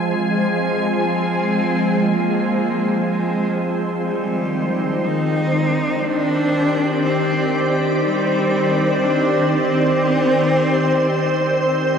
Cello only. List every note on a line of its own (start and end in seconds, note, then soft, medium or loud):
0.07 1.06 F3 medium
1.04 2.07 C4 medium
2.06 3.07 A#3 medium
3.05 3.80 G#3 medium
4.06 5.05 G3 medium
5.04 6.06 D#4 medium
6.05 7.07 D4 loud
7.05 7.79 C4 medium
8.04 9.04 G3 medium
9.02 9.54 D4 medium
9.53 11.53 C4 medium